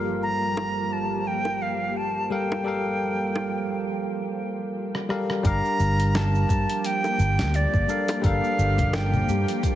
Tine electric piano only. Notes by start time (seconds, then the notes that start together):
Already playing: G3 F4 G4 A4 A#4 F5
2.30 G3 G4 A4 A#4 F5
2.64 G3 G4 A4 A#4
2.68 F5
5.09 G3 G4 A4 A#4 F5
5.43 G3 D4 G4 A#4
5.47 F5
7.88 G3 D4 A4 A#4 F5
8.22 G3 D4 A4 A#4
8.26 F5